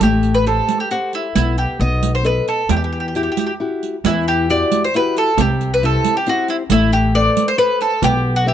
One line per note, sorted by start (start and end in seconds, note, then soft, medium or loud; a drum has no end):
0.00 0.58 A1 medium
0.00 0.45 A3 medium
0.00 0.37 G4 medium
0.00 riq medium
0.23 riq soft
0.34 0.46 B4 medium
0.46 0.82 G4 soft
0.46 0.82 A4 soft
0.46 0.78 A4 medium
0.46 0.82 C5 medium
0.46 riq soft
0.69 riq soft
0.80 0.90 G4 medium
0.91 1.11 F#4 medium
0.91 1.26 G4 soft
0.91 1.27 A4 soft
0.91 1.27 C5 soft
0.91 riq soft
1.13 1.34 E4 medium
1.13 riq soft
1.35 1.64 B1 medium
1.35 1.78 B3 medium
1.35 1.56 E4 medium
1.35 riq medium
1.58 1.78 G4 medium
1.58 riq soft
1.80 2.38 B1 loud
1.80 2.23 B3 medium
1.80 2.11 D#5 medium
1.80 riq soft
2.03 riq soft
2.15 2.24 C5 medium
2.24 2.60 A4 medium
2.24 2.60 B4 soft
2.24 2.48 B4 medium
2.24 2.61 D#5 medium
2.24 riq soft
2.48 2.68 A4 medium
2.48 riq soft
2.69 3.28 E2 medium
2.69 3.14 E3 medium
2.69 2.75 G4 medium
2.69 riq medium
2.77 2.83 G4 soft
2.84 2.91 G4 soft
2.92 2.99 G4 soft
3.00 3.07 G4 soft
3.08 3.15 G4 soft
3.15 3.51 E4 soft
3.15 3.51 F#4 soft
3.15 3.51 G4 medium
3.15 3.22 G4 medium
3.15 riq soft
3.23 3.30 G4 soft
3.32 3.38 G4 medium
3.37 3.45 G4 soft
3.37 riq soft
3.46 3.53 G4 medium
3.60 3.96 E4 soft
3.60 3.96 F#4 soft
3.60 3.96 G4 soft
3.83 riq soft
4.04 4.62 E2 medium
4.04 4.49 E3 medium
4.04 4.28 E4 medium
4.04 riq medium
4.28 4.50 G4 medium
4.28 riq soft
4.50 4.85 E4 soft
4.50 4.85 F#4 soft
4.50 4.86 G4 medium
4.50 4.84 D5 medium
4.50 riq soft
4.72 riq soft
4.84 4.94 C5 medium
4.94 5.30 E4 soft
4.94 5.30 F#4 soft
4.94 5.31 G4 medium
4.94 5.16 B4 medium
4.94 riq soft
5.17 5.40 A4 medium
5.17 riq soft
5.38 5.95 C2 loud
5.38 5.82 C3 medium
5.38 5.70 G4 medium
5.38 riq medium
5.61 riq soft
5.74 5.83 B4 medium
5.83 6.18 C4 soft
5.83 6.18 E4 soft
5.83 6.19 G4 medium
5.83 6.15 A4 medium
5.83 riq soft
6.04 riq medium
6.17 6.26 G4 medium
6.26 6.62 C4 soft
6.26 6.62 E4 soft
6.26 6.49 F#4 medium
6.26 6.63 G4 soft
6.26 riq soft
6.48 6.56 E4 medium
6.48 riq soft
6.70 7.27 A1 medium
6.70 7.14 A3 medium
6.70 6.92 E4 loud
6.70 riq medium
6.92 7.15 G4 medium
6.92 riq soft
7.15 7.50 A4 medium
7.15 7.50 B4 soft
7.15 7.50 C5 medium
7.15 7.46 D5 loud
7.15 riq soft
7.37 riq soft
7.48 7.58 C5 loud
7.58 7.93 A4 medium
7.58 7.79 B4 loud
7.58 7.93 B4 soft
7.58 7.94 C5 medium
7.58 riq soft
7.81 8.01 A4 medium
7.81 riq soft
8.02 8.54 B1 loud
8.02 8.45 B3 medium
8.02 8.34 G4 loud
8.02 riq medium
8.36 8.47 F#4 medium
8.46 8.54 G4 soft
8.46 8.54 G4 medium
8.46 8.54 B4 soft
8.46 8.54 E5 medium